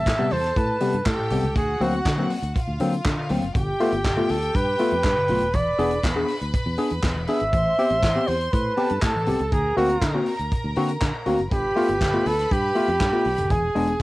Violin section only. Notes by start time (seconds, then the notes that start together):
Already playing: A4 A5
1.06 G4 G5
1.57 F#4 F#5
2.56 F4 F5
3.55 G4 G5
5.54 B4 B5
7.53 C5 C6
8.79 A4 A5
9.52 A#4 A#5
11.51 B4 B5
13.50 G#4 G#5